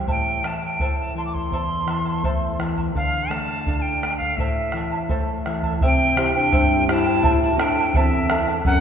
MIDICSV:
0, 0, Header, 1, 6, 480
1, 0, Start_track
1, 0, Key_signature, 0, "minor"
1, 0, Tempo, 714286
1, 48, Time_signature, 2, 2, 24, 8
1, 5916, End_track
2, 0, Start_track
2, 0, Title_t, "Quena"
2, 0, Program_c, 0, 77
2, 72, Note_on_c, 0, 79, 77
2, 315, Note_on_c, 0, 81, 77
2, 325, Note_off_c, 0, 79, 0
2, 423, Note_off_c, 0, 81, 0
2, 437, Note_on_c, 0, 79, 77
2, 649, Note_off_c, 0, 79, 0
2, 672, Note_on_c, 0, 81, 76
2, 774, Note_off_c, 0, 81, 0
2, 790, Note_on_c, 0, 84, 84
2, 841, Note_off_c, 0, 84, 0
2, 845, Note_on_c, 0, 86, 54
2, 900, Note_on_c, 0, 84, 92
2, 910, Note_off_c, 0, 86, 0
2, 1740, Note_off_c, 0, 84, 0
2, 1992, Note_on_c, 0, 77, 88
2, 2219, Note_on_c, 0, 81, 91
2, 2229, Note_off_c, 0, 77, 0
2, 2532, Note_off_c, 0, 81, 0
2, 2546, Note_on_c, 0, 81, 59
2, 2563, Note_on_c, 0, 79, 80
2, 2573, Note_off_c, 0, 81, 0
2, 2800, Note_off_c, 0, 79, 0
2, 2804, Note_on_c, 0, 77, 81
2, 2937, Note_on_c, 0, 76, 78
2, 2947, Note_off_c, 0, 77, 0
2, 3418, Note_off_c, 0, 76, 0
2, 3939, Note_on_c, 0, 79, 99
2, 4255, Note_off_c, 0, 79, 0
2, 4274, Note_on_c, 0, 79, 98
2, 4600, Note_off_c, 0, 79, 0
2, 4645, Note_on_c, 0, 81, 99
2, 4966, Note_off_c, 0, 81, 0
2, 5004, Note_on_c, 0, 81, 87
2, 5058, Note_off_c, 0, 81, 0
2, 5058, Note_on_c, 0, 81, 66
2, 5116, Note_on_c, 0, 79, 86
2, 5126, Note_off_c, 0, 81, 0
2, 5350, Note_on_c, 0, 76, 92
2, 5360, Note_off_c, 0, 79, 0
2, 5700, Note_off_c, 0, 76, 0
2, 5820, Note_on_c, 0, 78, 105
2, 5916, Note_off_c, 0, 78, 0
2, 5916, End_track
3, 0, Start_track
3, 0, Title_t, "Charango"
3, 0, Program_c, 1, 24
3, 48, Note_on_c, 1, 72, 57
3, 52, Note_on_c, 1, 76, 63
3, 54, Note_on_c, 1, 69, 63
3, 55, Note_on_c, 1, 64, 63
3, 55, Note_on_c, 1, 81, 64
3, 289, Note_off_c, 1, 76, 0
3, 290, Note_off_c, 1, 64, 0
3, 290, Note_off_c, 1, 72, 0
3, 293, Note_off_c, 1, 69, 0
3, 293, Note_off_c, 1, 81, 0
3, 297, Note_on_c, 1, 76, 51
3, 298, Note_on_c, 1, 64, 56
3, 300, Note_on_c, 1, 69, 56
3, 305, Note_on_c, 1, 81, 59
3, 411, Note_off_c, 1, 81, 0
3, 414, Note_off_c, 1, 64, 0
3, 414, Note_off_c, 1, 76, 0
3, 415, Note_off_c, 1, 69, 0
3, 419, Note_on_c, 1, 81, 52
3, 426, Note_on_c, 1, 64, 39
3, 427, Note_on_c, 1, 69, 42
3, 535, Note_off_c, 1, 81, 0
3, 537, Note_off_c, 1, 69, 0
3, 539, Note_off_c, 1, 64, 0
3, 541, Note_on_c, 1, 72, 71
3, 544, Note_on_c, 1, 76, 71
3, 545, Note_on_c, 1, 69, 76
3, 548, Note_on_c, 1, 64, 76
3, 548, Note_on_c, 1, 81, 76
3, 773, Note_off_c, 1, 76, 0
3, 777, Note_off_c, 1, 64, 0
3, 777, Note_off_c, 1, 72, 0
3, 779, Note_off_c, 1, 69, 0
3, 780, Note_off_c, 1, 81, 0
3, 781, Note_on_c, 1, 76, 52
3, 785, Note_on_c, 1, 64, 53
3, 789, Note_on_c, 1, 69, 52
3, 792, Note_on_c, 1, 81, 58
3, 895, Note_off_c, 1, 81, 0
3, 897, Note_off_c, 1, 76, 0
3, 898, Note_off_c, 1, 69, 0
3, 899, Note_off_c, 1, 64, 0
3, 904, Note_on_c, 1, 81, 47
3, 906, Note_on_c, 1, 69, 45
3, 911, Note_on_c, 1, 64, 33
3, 1019, Note_off_c, 1, 81, 0
3, 1020, Note_off_c, 1, 69, 0
3, 1023, Note_off_c, 1, 64, 0
3, 1025, Note_on_c, 1, 76, 68
3, 1027, Note_on_c, 1, 72, 64
3, 1031, Note_on_c, 1, 64, 66
3, 1034, Note_on_c, 1, 69, 66
3, 1034, Note_on_c, 1, 81, 79
3, 1260, Note_off_c, 1, 76, 0
3, 1261, Note_off_c, 1, 72, 0
3, 1262, Note_off_c, 1, 64, 0
3, 1265, Note_off_c, 1, 69, 0
3, 1265, Note_off_c, 1, 81, 0
3, 1267, Note_on_c, 1, 76, 51
3, 1270, Note_on_c, 1, 64, 57
3, 1272, Note_on_c, 1, 69, 53
3, 1274, Note_on_c, 1, 81, 63
3, 1373, Note_off_c, 1, 81, 0
3, 1378, Note_off_c, 1, 69, 0
3, 1378, Note_off_c, 1, 76, 0
3, 1381, Note_on_c, 1, 81, 52
3, 1383, Note_off_c, 1, 64, 0
3, 1386, Note_on_c, 1, 69, 43
3, 1392, Note_on_c, 1, 64, 37
3, 1498, Note_off_c, 1, 81, 0
3, 1499, Note_off_c, 1, 64, 0
3, 1501, Note_off_c, 1, 69, 0
3, 1506, Note_on_c, 1, 72, 77
3, 1507, Note_on_c, 1, 64, 85
3, 1507, Note_on_c, 1, 76, 77
3, 1510, Note_on_c, 1, 69, 85
3, 1511, Note_on_c, 1, 81, 84
3, 1738, Note_off_c, 1, 76, 0
3, 1741, Note_off_c, 1, 72, 0
3, 1742, Note_off_c, 1, 64, 0
3, 1743, Note_off_c, 1, 69, 0
3, 1744, Note_off_c, 1, 81, 0
3, 1746, Note_on_c, 1, 76, 56
3, 1751, Note_on_c, 1, 69, 68
3, 1752, Note_on_c, 1, 64, 57
3, 1759, Note_on_c, 1, 81, 62
3, 1858, Note_off_c, 1, 69, 0
3, 1858, Note_off_c, 1, 81, 0
3, 1862, Note_off_c, 1, 76, 0
3, 1863, Note_off_c, 1, 64, 0
3, 1866, Note_on_c, 1, 69, 45
3, 1866, Note_on_c, 1, 81, 53
3, 1871, Note_on_c, 1, 64, 41
3, 1982, Note_off_c, 1, 69, 0
3, 1982, Note_off_c, 1, 81, 0
3, 1984, Note_off_c, 1, 64, 0
3, 1989, Note_on_c, 1, 69, 71
3, 1991, Note_on_c, 1, 74, 70
3, 1996, Note_on_c, 1, 77, 72
3, 2219, Note_off_c, 1, 69, 0
3, 2225, Note_off_c, 1, 74, 0
3, 2227, Note_off_c, 1, 77, 0
3, 2227, Note_on_c, 1, 69, 57
3, 2232, Note_on_c, 1, 74, 59
3, 2242, Note_on_c, 1, 77, 63
3, 2343, Note_off_c, 1, 69, 0
3, 2345, Note_off_c, 1, 74, 0
3, 2346, Note_off_c, 1, 77, 0
3, 2354, Note_on_c, 1, 77, 48
3, 2364, Note_on_c, 1, 74, 38
3, 2467, Note_off_c, 1, 77, 0
3, 2469, Note_off_c, 1, 74, 0
3, 2471, Note_on_c, 1, 69, 73
3, 2477, Note_on_c, 1, 74, 73
3, 2477, Note_on_c, 1, 77, 81
3, 2696, Note_off_c, 1, 69, 0
3, 2701, Note_off_c, 1, 74, 0
3, 2704, Note_on_c, 1, 69, 58
3, 2706, Note_off_c, 1, 77, 0
3, 2709, Note_on_c, 1, 74, 59
3, 2714, Note_on_c, 1, 77, 57
3, 2820, Note_off_c, 1, 77, 0
3, 2821, Note_off_c, 1, 69, 0
3, 2824, Note_off_c, 1, 74, 0
3, 2828, Note_on_c, 1, 77, 43
3, 2835, Note_on_c, 1, 74, 38
3, 2943, Note_off_c, 1, 77, 0
3, 2947, Note_off_c, 1, 74, 0
3, 2953, Note_on_c, 1, 72, 62
3, 2954, Note_on_c, 1, 69, 80
3, 2955, Note_on_c, 1, 64, 67
3, 2956, Note_on_c, 1, 81, 73
3, 2957, Note_on_c, 1, 76, 68
3, 3183, Note_off_c, 1, 76, 0
3, 3186, Note_off_c, 1, 72, 0
3, 3187, Note_off_c, 1, 64, 0
3, 3187, Note_off_c, 1, 69, 0
3, 3188, Note_off_c, 1, 81, 0
3, 3191, Note_on_c, 1, 76, 55
3, 3194, Note_on_c, 1, 64, 58
3, 3200, Note_on_c, 1, 69, 56
3, 3200, Note_on_c, 1, 81, 66
3, 3297, Note_off_c, 1, 81, 0
3, 3302, Note_off_c, 1, 76, 0
3, 3303, Note_off_c, 1, 69, 0
3, 3305, Note_on_c, 1, 81, 50
3, 3307, Note_off_c, 1, 64, 0
3, 3311, Note_on_c, 1, 69, 45
3, 3316, Note_on_c, 1, 64, 40
3, 3420, Note_off_c, 1, 81, 0
3, 3421, Note_off_c, 1, 64, 0
3, 3423, Note_on_c, 1, 76, 72
3, 3425, Note_off_c, 1, 69, 0
3, 3426, Note_on_c, 1, 72, 82
3, 3429, Note_on_c, 1, 64, 68
3, 3431, Note_on_c, 1, 81, 88
3, 3432, Note_on_c, 1, 69, 87
3, 3659, Note_off_c, 1, 76, 0
3, 3661, Note_off_c, 1, 64, 0
3, 3663, Note_off_c, 1, 72, 0
3, 3665, Note_off_c, 1, 81, 0
3, 3666, Note_off_c, 1, 69, 0
3, 3667, Note_on_c, 1, 76, 63
3, 3669, Note_on_c, 1, 64, 59
3, 3676, Note_on_c, 1, 69, 72
3, 3677, Note_on_c, 1, 81, 72
3, 3780, Note_off_c, 1, 81, 0
3, 3783, Note_off_c, 1, 76, 0
3, 3784, Note_off_c, 1, 64, 0
3, 3784, Note_off_c, 1, 69, 0
3, 3788, Note_on_c, 1, 81, 50
3, 3792, Note_on_c, 1, 69, 52
3, 3801, Note_on_c, 1, 64, 47
3, 3903, Note_off_c, 1, 81, 0
3, 3905, Note_off_c, 1, 69, 0
3, 3907, Note_off_c, 1, 64, 0
3, 3913, Note_on_c, 1, 67, 81
3, 3913, Note_on_c, 1, 76, 84
3, 3915, Note_on_c, 1, 64, 88
3, 3919, Note_on_c, 1, 72, 83
3, 3920, Note_on_c, 1, 79, 83
3, 4139, Note_off_c, 1, 76, 0
3, 4143, Note_off_c, 1, 72, 0
3, 4145, Note_off_c, 1, 64, 0
3, 4145, Note_off_c, 1, 67, 0
3, 4147, Note_on_c, 1, 76, 58
3, 4149, Note_off_c, 1, 79, 0
3, 4151, Note_on_c, 1, 72, 63
3, 4153, Note_on_c, 1, 64, 66
3, 4156, Note_on_c, 1, 79, 73
3, 4262, Note_off_c, 1, 79, 0
3, 4263, Note_off_c, 1, 76, 0
3, 4264, Note_off_c, 1, 72, 0
3, 4265, Note_off_c, 1, 64, 0
3, 4270, Note_on_c, 1, 79, 58
3, 4273, Note_on_c, 1, 72, 55
3, 4277, Note_on_c, 1, 64, 45
3, 4375, Note_off_c, 1, 64, 0
3, 4379, Note_off_c, 1, 72, 0
3, 4379, Note_off_c, 1, 79, 0
3, 4379, Note_on_c, 1, 67, 78
3, 4383, Note_on_c, 1, 64, 96
3, 4386, Note_on_c, 1, 76, 91
3, 4387, Note_on_c, 1, 72, 98
3, 4387, Note_on_c, 1, 79, 93
3, 4618, Note_off_c, 1, 67, 0
3, 4620, Note_off_c, 1, 64, 0
3, 4621, Note_off_c, 1, 76, 0
3, 4622, Note_off_c, 1, 72, 0
3, 4622, Note_off_c, 1, 79, 0
3, 4631, Note_on_c, 1, 76, 66
3, 4635, Note_on_c, 1, 64, 66
3, 4636, Note_on_c, 1, 72, 68
3, 4640, Note_on_c, 1, 79, 75
3, 4736, Note_off_c, 1, 79, 0
3, 4742, Note_off_c, 1, 72, 0
3, 4744, Note_off_c, 1, 76, 0
3, 4744, Note_on_c, 1, 79, 58
3, 4745, Note_off_c, 1, 64, 0
3, 4750, Note_on_c, 1, 72, 49
3, 4755, Note_on_c, 1, 64, 46
3, 4853, Note_off_c, 1, 72, 0
3, 4854, Note_off_c, 1, 64, 0
3, 4859, Note_on_c, 1, 76, 90
3, 4860, Note_off_c, 1, 79, 0
3, 4861, Note_on_c, 1, 72, 81
3, 4862, Note_on_c, 1, 64, 86
3, 4863, Note_on_c, 1, 81, 91
3, 4865, Note_on_c, 1, 69, 86
3, 5093, Note_off_c, 1, 76, 0
3, 5095, Note_off_c, 1, 64, 0
3, 5098, Note_off_c, 1, 72, 0
3, 5099, Note_off_c, 1, 69, 0
3, 5099, Note_off_c, 1, 81, 0
3, 5101, Note_on_c, 1, 76, 64
3, 5103, Note_on_c, 1, 64, 63
3, 5110, Note_on_c, 1, 69, 72
3, 5111, Note_on_c, 1, 81, 77
3, 5218, Note_off_c, 1, 76, 0
3, 5219, Note_off_c, 1, 64, 0
3, 5222, Note_off_c, 1, 69, 0
3, 5223, Note_off_c, 1, 81, 0
3, 5231, Note_on_c, 1, 69, 61
3, 5231, Note_on_c, 1, 81, 58
3, 5239, Note_on_c, 1, 64, 52
3, 5339, Note_off_c, 1, 64, 0
3, 5340, Note_off_c, 1, 81, 0
3, 5342, Note_off_c, 1, 69, 0
3, 5343, Note_on_c, 1, 76, 86
3, 5347, Note_on_c, 1, 64, 89
3, 5349, Note_on_c, 1, 69, 102
3, 5349, Note_on_c, 1, 72, 77
3, 5354, Note_on_c, 1, 81, 89
3, 5569, Note_off_c, 1, 76, 0
3, 5576, Note_off_c, 1, 64, 0
3, 5577, Note_on_c, 1, 76, 62
3, 5578, Note_off_c, 1, 81, 0
3, 5579, Note_off_c, 1, 69, 0
3, 5580, Note_off_c, 1, 72, 0
3, 5584, Note_on_c, 1, 64, 66
3, 5586, Note_on_c, 1, 81, 66
3, 5587, Note_on_c, 1, 69, 70
3, 5686, Note_off_c, 1, 81, 0
3, 5691, Note_off_c, 1, 76, 0
3, 5693, Note_off_c, 1, 69, 0
3, 5694, Note_on_c, 1, 81, 60
3, 5698, Note_off_c, 1, 64, 0
3, 5701, Note_on_c, 1, 69, 53
3, 5706, Note_on_c, 1, 64, 45
3, 5812, Note_off_c, 1, 81, 0
3, 5816, Note_off_c, 1, 69, 0
3, 5818, Note_off_c, 1, 64, 0
3, 5822, Note_on_c, 1, 70, 84
3, 5827, Note_on_c, 1, 73, 82
3, 5831, Note_on_c, 1, 78, 83
3, 5916, Note_off_c, 1, 70, 0
3, 5916, Note_off_c, 1, 73, 0
3, 5916, Note_off_c, 1, 78, 0
3, 5916, End_track
4, 0, Start_track
4, 0, Title_t, "Pan flute"
4, 0, Program_c, 2, 75
4, 3924, Note_on_c, 2, 60, 78
4, 4246, Note_off_c, 2, 60, 0
4, 4270, Note_on_c, 2, 62, 89
4, 4598, Note_off_c, 2, 62, 0
4, 4634, Note_on_c, 2, 64, 87
4, 4960, Note_off_c, 2, 64, 0
4, 4989, Note_on_c, 2, 64, 78
4, 5052, Note_on_c, 2, 66, 58
4, 5062, Note_off_c, 2, 64, 0
4, 5112, Note_on_c, 2, 62, 76
4, 5122, Note_off_c, 2, 66, 0
4, 5345, Note_on_c, 2, 60, 89
4, 5355, Note_off_c, 2, 62, 0
4, 5613, Note_off_c, 2, 60, 0
4, 5820, Note_on_c, 2, 61, 98
4, 5916, Note_off_c, 2, 61, 0
4, 5916, End_track
5, 0, Start_track
5, 0, Title_t, "Nylon-string guitar"
5, 0, Program_c, 3, 24
5, 45, Note_on_c, 3, 45, 56
5, 293, Note_on_c, 3, 52, 46
5, 526, Note_off_c, 3, 52, 0
5, 532, Note_on_c, 3, 57, 49
5, 765, Note_off_c, 3, 57, 0
5, 771, Note_on_c, 3, 52, 47
5, 985, Note_off_c, 3, 45, 0
5, 1006, Note_off_c, 3, 52, 0
5, 1014, Note_on_c, 3, 40, 61
5, 1254, Note_on_c, 3, 52, 46
5, 1488, Note_off_c, 3, 52, 0
5, 1497, Note_on_c, 3, 57, 49
5, 1730, Note_off_c, 3, 57, 0
5, 1741, Note_on_c, 3, 52, 52
5, 1951, Note_off_c, 3, 40, 0
5, 1972, Note_off_c, 3, 52, 0
5, 1981, Note_on_c, 3, 50, 65
5, 2219, Note_on_c, 3, 57, 51
5, 2452, Note_off_c, 3, 57, 0
5, 2467, Note_on_c, 3, 62, 52
5, 2696, Note_off_c, 3, 62, 0
5, 2708, Note_on_c, 3, 57, 47
5, 2915, Note_off_c, 3, 50, 0
5, 2936, Note_on_c, 3, 45, 62
5, 2937, Note_off_c, 3, 57, 0
5, 3183, Note_on_c, 3, 52, 51
5, 3414, Note_off_c, 3, 52, 0
5, 3423, Note_on_c, 3, 57, 50
5, 3654, Note_off_c, 3, 57, 0
5, 3673, Note_on_c, 3, 52, 49
5, 3871, Note_off_c, 3, 45, 0
5, 3899, Note_off_c, 3, 52, 0
5, 3913, Note_on_c, 3, 48, 69
5, 4144, Note_on_c, 3, 60, 54
5, 4149, Note_on_c, 3, 64, 47
5, 4154, Note_on_c, 3, 67, 61
5, 4371, Note_off_c, 3, 48, 0
5, 4386, Note_on_c, 3, 43, 69
5, 4525, Note_off_c, 3, 60, 0
5, 4528, Note_off_c, 3, 64, 0
5, 4530, Note_off_c, 3, 67, 0
5, 4623, Note_on_c, 3, 60, 56
5, 4626, Note_on_c, 3, 64, 46
5, 4629, Note_on_c, 3, 67, 58
5, 4812, Note_off_c, 3, 60, 0
5, 4814, Note_off_c, 3, 64, 0
5, 4815, Note_off_c, 3, 67, 0
5, 4846, Note_off_c, 3, 43, 0
5, 4862, Note_on_c, 3, 45, 68
5, 5093, Note_on_c, 3, 60, 58
5, 5094, Note_on_c, 3, 64, 47
5, 5099, Note_on_c, 3, 69, 55
5, 5323, Note_off_c, 3, 45, 0
5, 5328, Note_on_c, 3, 40, 67
5, 5476, Note_off_c, 3, 60, 0
5, 5476, Note_off_c, 3, 64, 0
5, 5479, Note_off_c, 3, 69, 0
5, 5580, Note_on_c, 3, 60, 51
5, 5582, Note_on_c, 3, 64, 46
5, 5586, Note_on_c, 3, 69, 59
5, 5768, Note_off_c, 3, 60, 0
5, 5770, Note_off_c, 3, 64, 0
5, 5771, Note_off_c, 3, 69, 0
5, 5794, Note_off_c, 3, 40, 0
5, 5808, Note_on_c, 3, 42, 77
5, 5916, Note_off_c, 3, 42, 0
5, 5916, End_track
6, 0, Start_track
6, 0, Title_t, "Bombo"
6, 51, Note_on_c, 9, 43, 59
6, 118, Note_off_c, 9, 43, 0
6, 298, Note_on_c, 9, 37, 47
6, 365, Note_off_c, 9, 37, 0
6, 534, Note_on_c, 9, 43, 64
6, 602, Note_off_c, 9, 43, 0
6, 902, Note_on_c, 9, 43, 45
6, 969, Note_off_c, 9, 43, 0
6, 1021, Note_on_c, 9, 43, 54
6, 1088, Note_off_c, 9, 43, 0
6, 1261, Note_on_c, 9, 37, 46
6, 1328, Note_off_c, 9, 37, 0
6, 1503, Note_on_c, 9, 43, 62
6, 1570, Note_off_c, 9, 43, 0
6, 1746, Note_on_c, 9, 37, 49
6, 1813, Note_off_c, 9, 37, 0
6, 1866, Note_on_c, 9, 43, 47
6, 1933, Note_off_c, 9, 43, 0
6, 1983, Note_on_c, 9, 43, 56
6, 2050, Note_off_c, 9, 43, 0
6, 2225, Note_on_c, 9, 37, 50
6, 2292, Note_off_c, 9, 37, 0
6, 2461, Note_on_c, 9, 43, 67
6, 2528, Note_off_c, 9, 43, 0
6, 2710, Note_on_c, 9, 37, 54
6, 2777, Note_off_c, 9, 37, 0
6, 2825, Note_on_c, 9, 43, 44
6, 2892, Note_off_c, 9, 43, 0
6, 2943, Note_on_c, 9, 43, 61
6, 3010, Note_off_c, 9, 43, 0
6, 3173, Note_on_c, 9, 37, 48
6, 3240, Note_off_c, 9, 37, 0
6, 3420, Note_on_c, 9, 43, 66
6, 3488, Note_off_c, 9, 43, 0
6, 3668, Note_on_c, 9, 37, 54
6, 3735, Note_off_c, 9, 37, 0
6, 3780, Note_on_c, 9, 43, 45
6, 3847, Note_off_c, 9, 43, 0
6, 3904, Note_on_c, 9, 43, 71
6, 3971, Note_off_c, 9, 43, 0
6, 4148, Note_on_c, 9, 37, 58
6, 4215, Note_off_c, 9, 37, 0
6, 4384, Note_on_c, 9, 43, 79
6, 4451, Note_off_c, 9, 43, 0
6, 4631, Note_on_c, 9, 37, 67
6, 4699, Note_off_c, 9, 37, 0
6, 4862, Note_on_c, 9, 43, 82
6, 4929, Note_off_c, 9, 43, 0
6, 5104, Note_on_c, 9, 37, 64
6, 5171, Note_off_c, 9, 37, 0
6, 5337, Note_on_c, 9, 43, 86
6, 5404, Note_off_c, 9, 43, 0
6, 5575, Note_on_c, 9, 37, 65
6, 5642, Note_off_c, 9, 37, 0
6, 5809, Note_on_c, 9, 43, 76
6, 5876, Note_off_c, 9, 43, 0
6, 5916, End_track
0, 0, End_of_file